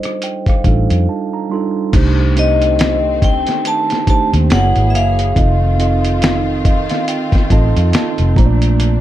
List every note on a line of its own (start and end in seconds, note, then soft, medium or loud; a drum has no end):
0.00 0.64 G3 medium
0.00 0.65 D4 medium
0.00 0.66 D#4 medium
0.00 0.67 F4 medium
0.00 0.68 A4 medium
0.00 1.04 C5 medium
0.00 0.20 D#5 medium
0.00 closed hi-hat soft
0.05 cross-stick soft
0.22 0.46 G5 medium
0.22 closed hi-hat medium
0.46 0.65 F5 medium
0.46 kick medium
0.46 cross-stick soft
0.46 closed hi-hat soft
0.64 0.87 A1 medium
0.64 1.38 G3 medium
0.64 1.39 D4 medium
0.64 1.39 D#4 medium
0.64 1.40 F4 medium
0.64 1.40 A4 medium
0.64 1.05 F5 medium
0.64 kick medium
0.64 closed hi-hat medium
0.90 1.06 F2 medium
0.90 closed hi-hat soft
1.09 1.32 A5 medium
1.34 1.50 A#5 medium
1.50 1.87 G3 medium
1.50 1.88 D4 medium
1.50 1.88 D#4 medium
1.50 1.88 F4 medium
1.50 1.89 A4 medium
1.50 1.91 C6 medium
1.93 3.43 C2 loud
1.93 4.48 D#3 medium
1.93 2.30 A3 medium
1.93 4.48 A3 medium
1.93 4.48 C4 medium
1.93 2.30 D4 medium
1.93 2.31 D#4 medium
1.93 2.31 G4 medium
1.93 2.32 C5 medium
1.93 kick loud
1.93 closed hi-hat medium
1.93 crash medium
2.35 3.81 A3 medium
2.35 3.81 C4 medium
2.35 3.82 D#4 medium
2.35 3.82 G4 medium
2.35 3.82 C5 medium
2.35 3.26 D#5 medium
2.35 closed hi-hat medium
2.62 closed hi-hat soft
2.79 snare loud
2.79 closed hi-hat medium
3.22 3.63 G5 medium
3.22 kick medium
3.22 closed hi-hat medium
3.47 snare soft
3.47 closed hi-hat medium
3.65 4.06 A5 medium
3.65 closed hi-hat medium
3.90 snare soft
3.90 closed hi-hat soft
4.06 4.50 A3 medium
4.06 4.50 D4 medium
4.06 4.51 D#4 medium
4.06 4.51 G4 medium
4.06 4.52 C5 medium
4.06 4.29 A5 medium
4.06 muted fingered electric bass stroke soft
4.06 kick medium
4.06 closed hi-hat medium
4.33 4.49 D#2 loud
4.33 closed hi-hat soft
4.49 4.73 F#1 loud
4.49 5.36 E3 medium
4.49 5.24 A#3 medium
4.49 5.36 A#3 medium
4.49 5.24 E4 medium
4.49 5.25 F#4 medium
4.49 5.36 G#4 medium
4.49 5.25 G#4 medium
4.49 5.25 C#5 medium
4.49 4.90 F#5 medium
4.49 snare loud
4.49 closed hi-hat medium
4.76 4.95 G#1 medium
4.76 closed hi-hat soft
4.90 4.95 E5 medium
4.95 5.32 F#1 medium
4.95 7.47 F5 medium
4.95 closed hi-hat medium
5.19 closed hi-hat medium
5.35 6.86 F1 loud
5.35 8.33 D#3 medium
5.35 5.73 C4 medium
5.35 9.01 C4 medium
5.35 5.73 D#4 medium
5.35 8.33 F4 medium
5.35 5.73 F4 medium
5.35 5.74 A4 medium
5.35 5.74 D#5 medium
5.35 kick loud
5.35 closed hi-hat medium
5.78 7.23 C4 medium
5.78 7.24 D#4 medium
5.78 7.24 F4 medium
5.78 7.25 A4 medium
5.78 6.65 D#5 medium
5.78 closed hi-hat medium
6.05 closed hi-hat soft
6.22 snare loud
6.22 closed hi-hat medium
6.65 6.88 D#5 medium
6.65 kick loud
6.65 closed hi-hat medium
6.89 7.07 F5 medium
6.89 snare soft
6.89 closed hi-hat medium
7.08 7.48 G5 medium
7.08 closed hi-hat medium
7.32 kick medium
7.32 snare soft
7.32 closed hi-hat soft
7.50 7.72 A1 medium
7.50 8.36 C4 medium
7.50 8.37 D#4 medium
7.50 8.36 F4 medium
7.50 8.37 A4 medium
7.50 8.38 D#5 loud
7.50 7.91 A5 medium
7.50 kick medium
7.50 closed hi-hat medium
7.76 7.92 F2 medium
7.76 closed hi-hat soft
7.93 8.34 A5 medium
7.93 snare loud
7.93 closed hi-hat medium
8.18 8.35 F1 medium
8.18 closed hi-hat soft
8.35 9.01 A#1 loud
8.35 9.01 A#2 medium
8.35 9.01 A3 medium
8.35 9.01 A#3 medium
8.35 9.01 D4 medium
8.35 9.01 F4 medium
8.35 8.45 C5 medium
8.35 8.77 A#5 medium
8.35 kick loud
8.35 closed hi-hat medium
8.46 9.01 D5 medium
8.62 closed hi-hat medium
8.80 closed hi-hat medium